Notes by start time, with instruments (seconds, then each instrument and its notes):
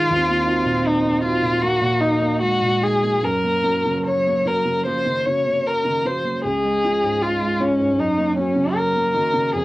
Already playing: felt piano G#2 D#3 G#3 D#4 G#4, violin F4
0.10 felt piano D#2, cello C4
0.28 felt piano A#3
0.47 felt piano D#4 F#4
0.65 felt piano A#2
0.87 violin D#4
1.04 felt piano A#3
1.24 felt piano D#4 F#4, violin F4
1.42 felt piano A#2
1.62 felt piano A#3, cello A#3, violin F#4
1.81 felt piano A#2
2.01 violin D#4, felt piano D#4 F#4
2.22 felt piano A#3
2.42 cello G#3, violin F#4
2.62 felt piano A#2
2.81 felt piano D#4 F#4, violin G#4
3.03 felt piano A#3
3.22 felt piano F#2, cello F#3, violin A#4
3.44 felt piano A#3
3.64 felt piano C#4 F#4
3.85 felt piano C#3
4.06 violin C#5
4.26 felt piano A#3
4.45 felt piano C#4 F#4, violin A#4
4.65 felt piano C#3
4.86 cello F3, felt piano A#3, violin C5
5.06 felt piano C#3, cello D#3
5.25 cello C#3, felt piano C#4 F#4, violin C#5
5.45 cello C3, felt piano A#3
5.65 cello C#3, violin A#4
5.84 felt piano C#3, cello D#3
6.02 cello F3, felt piano C#4 F#4, violin C5
6.23 cello F#3, felt piano A#3
6.40 cello G#3
6.45 felt piano C#2, violin G#4
6.64 felt piano G#3
6.84 felt piano C#4 F4
7.03 felt piano G#2
7.22 violin F4
7.40 felt piano G#3
7.60 felt piano C#4 F4, violin C#4
7.80 felt piano G#2
7.96 felt piano F#2, cello F#3, violin D#4
8.18 felt piano A#3
8.37 felt piano C#4 F#4, violin C#4
8.56 felt piano C#3
8.76 violin A#4
8.95 felt piano A#3
9.14 cello D#3, felt piano C#4 F#4
9.33 felt piano C#3
9.54 felt piano F2, cello C4, violin G#4